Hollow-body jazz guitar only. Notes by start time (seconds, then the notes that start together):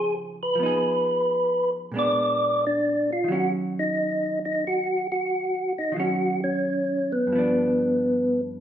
Already playing: C#3 F3 C4 D#4
0.55 F3
0.60 B3 D#4
0.66 G#4
1.92 A#2 G#3 B3
1.97 D4
3.24 D#3
3.28 F#3 C#4
5.92 D#3
5.96 F#3 C#4
7.27 G2
7.32 F3 B3
7.38 D4